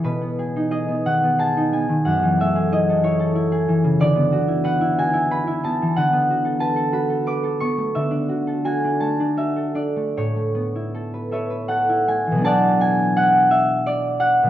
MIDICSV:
0, 0, Header, 1, 2, 480
1, 0, Start_track
1, 0, Tempo, 674916
1, 25, Time_signature, 6, 3, 24, 8
1, 1464, Tempo, 655022
1, 5784, Tempo, 713436
1, 6744, Tempo, 770218
1, 8664, Tempo, 699301
1, 10062, End_track
2, 0, Start_track
2, 0, Title_t, "Harp"
2, 0, Program_c, 0, 46
2, 0, Note_on_c, 0, 59, 46
2, 0, Note_on_c, 0, 68, 44
2, 0, Note_on_c, 0, 73, 73
2, 0, Note_on_c, 0, 80, 62
2, 28, Note_on_c, 0, 47, 57
2, 33, Note_on_c, 0, 71, 70
2, 144, Note_off_c, 0, 59, 0
2, 153, Note_on_c, 0, 59, 41
2, 268, Note_off_c, 0, 68, 0
2, 277, Note_on_c, 0, 68, 49
2, 399, Note_on_c, 0, 63, 50
2, 496, Note_off_c, 0, 68, 0
2, 502, Note_on_c, 0, 68, 51
2, 506, Note_on_c, 0, 75, 85
2, 618, Note_off_c, 0, 59, 0
2, 626, Note_on_c, 0, 59, 53
2, 750, Note_on_c, 0, 51, 40
2, 752, Note_on_c, 0, 78, 78
2, 871, Note_off_c, 0, 59, 0
2, 880, Note_on_c, 0, 59, 52
2, 978, Note_off_c, 0, 68, 0
2, 984, Note_on_c, 0, 68, 54
2, 992, Note_on_c, 0, 81, 95
2, 1092, Note_off_c, 0, 80, 0
2, 1108, Note_off_c, 0, 63, 0
2, 1117, Note_on_c, 0, 63, 54
2, 1218, Note_off_c, 0, 59, 0
2, 1226, Note_on_c, 0, 59, 49
2, 1230, Note_on_c, 0, 80, 71
2, 1333, Note_off_c, 0, 51, 0
2, 1342, Note_on_c, 0, 51, 48
2, 1394, Note_off_c, 0, 81, 0
2, 1448, Note_off_c, 0, 78, 0
2, 1456, Note_on_c, 0, 78, 88
2, 1460, Note_on_c, 0, 42, 63
2, 1481, Note_off_c, 0, 75, 0
2, 1482, Note_off_c, 0, 51, 0
2, 1484, Note_off_c, 0, 59, 0
2, 1487, Note_off_c, 0, 47, 0
2, 1487, Note_off_c, 0, 71, 0
2, 1489, Note_off_c, 0, 63, 0
2, 1587, Note_on_c, 0, 52, 53
2, 1711, Note_on_c, 0, 57, 52
2, 1717, Note_on_c, 0, 76, 92
2, 1818, Note_off_c, 0, 68, 0
2, 1827, Note_on_c, 0, 68, 52
2, 1948, Note_on_c, 0, 64, 60
2, 1952, Note_on_c, 0, 75, 87
2, 2073, Note_on_c, 0, 69, 59
2, 2090, Note_off_c, 0, 73, 0
2, 2168, Note_off_c, 0, 64, 0
2, 2177, Note_on_c, 0, 64, 57
2, 2181, Note_on_c, 0, 73, 84
2, 2286, Note_off_c, 0, 69, 0
2, 2295, Note_on_c, 0, 69, 65
2, 2353, Note_off_c, 0, 75, 0
2, 2403, Note_off_c, 0, 64, 0
2, 2412, Note_on_c, 0, 64, 63
2, 2525, Note_off_c, 0, 68, 0
2, 2533, Note_on_c, 0, 68, 63
2, 2647, Note_off_c, 0, 52, 0
2, 2656, Note_on_c, 0, 52, 55
2, 2769, Note_on_c, 0, 49, 57
2, 2887, Note_on_c, 0, 50, 74
2, 2891, Note_on_c, 0, 74, 98
2, 2911, Note_off_c, 0, 49, 0
2, 2912, Note_off_c, 0, 68, 0
2, 2914, Note_off_c, 0, 42, 0
2, 2914, Note_off_c, 0, 52, 0
2, 2914, Note_off_c, 0, 73, 0
2, 2917, Note_off_c, 0, 80, 0
2, 3000, Note_on_c, 0, 59, 54
2, 3122, Note_on_c, 0, 66, 53
2, 3230, Note_off_c, 0, 64, 0
2, 3239, Note_on_c, 0, 64, 56
2, 3351, Note_off_c, 0, 78, 0
2, 3356, Note_on_c, 0, 71, 61
2, 3361, Note_on_c, 0, 78, 91
2, 3471, Note_off_c, 0, 64, 0
2, 3480, Note_on_c, 0, 64, 59
2, 3602, Note_off_c, 0, 66, 0
2, 3609, Note_on_c, 0, 66, 48
2, 3610, Note_on_c, 0, 80, 97
2, 3709, Note_off_c, 0, 64, 0
2, 3718, Note_on_c, 0, 64, 62
2, 3838, Note_off_c, 0, 71, 0
2, 3845, Note_on_c, 0, 71, 61
2, 3849, Note_on_c, 0, 83, 94
2, 3957, Note_off_c, 0, 64, 0
2, 3966, Note_on_c, 0, 64, 63
2, 4078, Note_off_c, 0, 59, 0
2, 4084, Note_on_c, 0, 59, 49
2, 4090, Note_on_c, 0, 81, 88
2, 4220, Note_on_c, 0, 52, 48
2, 4317, Note_off_c, 0, 78, 0
2, 4321, Note_off_c, 0, 50, 0
2, 4326, Note_on_c, 0, 78, 102
2, 4330, Note_on_c, 0, 50, 69
2, 4351, Note_off_c, 0, 64, 0
2, 4353, Note_off_c, 0, 80, 0
2, 4356, Note_off_c, 0, 52, 0
2, 4358, Note_off_c, 0, 76, 0
2, 4437, Note_off_c, 0, 59, 0
2, 4446, Note_on_c, 0, 59, 58
2, 4566, Note_off_c, 0, 66, 0
2, 4569, Note_off_c, 0, 57, 0
2, 4575, Note_on_c, 0, 66, 57
2, 4672, Note_off_c, 0, 69, 0
2, 4681, Note_on_c, 0, 69, 56
2, 4783, Note_off_c, 0, 81, 0
2, 4785, Note_off_c, 0, 71, 0
2, 4792, Note_on_c, 0, 71, 63
2, 4794, Note_on_c, 0, 81, 91
2, 4901, Note_off_c, 0, 69, 0
2, 4910, Note_on_c, 0, 69, 59
2, 5022, Note_off_c, 0, 66, 0
2, 5024, Note_off_c, 0, 83, 0
2, 5028, Note_on_c, 0, 66, 52
2, 5036, Note_on_c, 0, 83, 85
2, 5148, Note_off_c, 0, 69, 0
2, 5157, Note_on_c, 0, 69, 59
2, 5277, Note_off_c, 0, 71, 0
2, 5282, Note_on_c, 0, 86, 91
2, 5285, Note_on_c, 0, 71, 58
2, 5395, Note_off_c, 0, 69, 0
2, 5403, Note_on_c, 0, 69, 57
2, 5524, Note_off_c, 0, 59, 0
2, 5528, Note_on_c, 0, 85, 92
2, 5533, Note_on_c, 0, 59, 52
2, 5653, Note_on_c, 0, 57, 47
2, 5749, Note_off_c, 0, 74, 0
2, 5774, Note_off_c, 0, 50, 0
2, 5780, Note_on_c, 0, 76, 86
2, 5783, Note_on_c, 0, 50, 67
2, 5796, Note_off_c, 0, 83, 0
2, 5799, Note_off_c, 0, 85, 0
2, 5801, Note_off_c, 0, 59, 0
2, 5801, Note_off_c, 0, 71, 0
2, 5887, Note_on_c, 0, 62, 48
2, 6000, Note_off_c, 0, 66, 0
2, 6008, Note_on_c, 0, 66, 46
2, 6123, Note_off_c, 0, 69, 0
2, 6131, Note_on_c, 0, 69, 51
2, 6240, Note_off_c, 0, 66, 0
2, 6247, Note_on_c, 0, 66, 50
2, 6251, Note_on_c, 0, 80, 86
2, 6369, Note_off_c, 0, 62, 0
2, 6377, Note_on_c, 0, 62, 53
2, 6479, Note_off_c, 0, 81, 0
2, 6482, Note_off_c, 0, 57, 0
2, 6487, Note_on_c, 0, 81, 66
2, 6490, Note_on_c, 0, 57, 42
2, 6611, Note_off_c, 0, 62, 0
2, 6619, Note_on_c, 0, 62, 51
2, 6666, Note_off_c, 0, 80, 0
2, 6728, Note_off_c, 0, 66, 0
2, 6731, Note_off_c, 0, 76, 0
2, 6736, Note_on_c, 0, 66, 50
2, 6739, Note_on_c, 0, 76, 82
2, 6850, Note_off_c, 0, 69, 0
2, 6857, Note_on_c, 0, 69, 50
2, 6967, Note_off_c, 0, 62, 0
2, 6973, Note_on_c, 0, 62, 48
2, 6977, Note_on_c, 0, 74, 69
2, 7045, Note_off_c, 0, 78, 0
2, 7100, Note_off_c, 0, 57, 0
2, 7107, Note_on_c, 0, 57, 42
2, 7238, Note_on_c, 0, 45, 60
2, 7241, Note_on_c, 0, 73, 70
2, 7244, Note_off_c, 0, 62, 0
2, 7244, Note_off_c, 0, 66, 0
2, 7244, Note_off_c, 0, 74, 0
2, 7246, Note_off_c, 0, 86, 0
2, 7248, Note_off_c, 0, 50, 0
2, 7347, Note_off_c, 0, 57, 0
2, 7354, Note_on_c, 0, 57, 42
2, 7471, Note_on_c, 0, 59, 46
2, 7600, Note_on_c, 0, 64, 43
2, 7711, Note_off_c, 0, 69, 0
2, 7719, Note_on_c, 0, 69, 44
2, 7838, Note_on_c, 0, 71, 52
2, 7942, Note_off_c, 0, 69, 0
2, 7943, Note_off_c, 0, 76, 0
2, 7948, Note_on_c, 0, 69, 45
2, 7950, Note_off_c, 0, 73, 0
2, 7951, Note_off_c, 0, 71, 0
2, 7952, Note_on_c, 0, 76, 72
2, 7957, Note_on_c, 0, 71, 62
2, 7959, Note_on_c, 0, 73, 54
2, 8057, Note_off_c, 0, 71, 0
2, 8065, Note_on_c, 0, 71, 49
2, 8173, Note_off_c, 0, 69, 0
2, 8178, Note_on_c, 0, 78, 89
2, 8181, Note_on_c, 0, 69, 50
2, 8301, Note_off_c, 0, 64, 0
2, 8309, Note_on_c, 0, 64, 50
2, 8417, Note_off_c, 0, 57, 0
2, 8424, Note_on_c, 0, 57, 41
2, 8428, Note_on_c, 0, 80, 82
2, 8543, Note_on_c, 0, 52, 38
2, 8572, Note_on_c, 0, 47, 71
2, 8590, Note_off_c, 0, 78, 0
2, 8594, Note_on_c, 0, 54, 59
2, 8605, Note_off_c, 0, 59, 0
2, 8613, Note_on_c, 0, 59, 61
2, 8633, Note_on_c, 0, 62, 53
2, 8646, Note_off_c, 0, 81, 0
2, 8653, Note_on_c, 0, 81, 117
2, 8660, Note_on_c, 0, 74, 78
2, 8663, Note_on_c, 0, 78, 79
2, 8679, Note_off_c, 0, 52, 0
2, 8683, Note_off_c, 0, 64, 0
2, 8683, Note_off_c, 0, 76, 0
2, 8689, Note_off_c, 0, 45, 0
2, 8834, Note_off_c, 0, 80, 0
2, 8903, Note_on_c, 0, 80, 104
2, 9138, Note_off_c, 0, 78, 0
2, 9146, Note_on_c, 0, 78, 106
2, 9315, Note_off_c, 0, 80, 0
2, 9382, Note_on_c, 0, 76, 99
2, 9619, Note_off_c, 0, 74, 0
2, 9627, Note_on_c, 0, 74, 96
2, 9788, Note_off_c, 0, 76, 0
2, 9848, Note_off_c, 0, 78, 0
2, 9857, Note_on_c, 0, 78, 99
2, 10006, Note_off_c, 0, 47, 0
2, 10014, Note_on_c, 0, 47, 71
2, 10026, Note_off_c, 0, 54, 0
2, 10034, Note_on_c, 0, 54, 51
2, 10062, Note_off_c, 0, 47, 0
2, 10062, Note_off_c, 0, 54, 0
2, 10062, Note_off_c, 0, 57, 0
2, 10062, Note_off_c, 0, 59, 0
2, 10062, Note_off_c, 0, 62, 0
2, 10062, Note_off_c, 0, 69, 0
2, 10062, Note_off_c, 0, 71, 0
2, 10062, Note_off_c, 0, 73, 0
2, 10062, Note_off_c, 0, 74, 0
2, 10062, Note_off_c, 0, 78, 0
2, 10062, Note_off_c, 0, 81, 0
2, 10062, End_track
0, 0, End_of_file